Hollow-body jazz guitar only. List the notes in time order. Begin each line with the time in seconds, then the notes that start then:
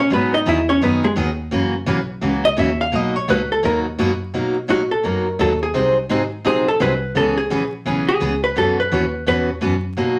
0.00 C#4 C#5
0.13 B3 B4
0.34 D#4 D#5
0.49 E4 E5
0.69 C#4 C#5
0.83 B3 B4
1.04 G#3 G#4
2.45 D#5
2.59 E5
2.81 F5
2.95 D#5
3.16 C#5
3.30 B4
3.52 A4
3.65 A#4
4.70 F#4
4.91 A4
5.06 A#4
5.41 A4
5.63 G#4
6.47 G#4
6.68 A4
6.82 B4
7.17 A4
7.37 G#4
8.09 G#4
8.44 B4
8.58 A4
8.80 B4
9.28 B4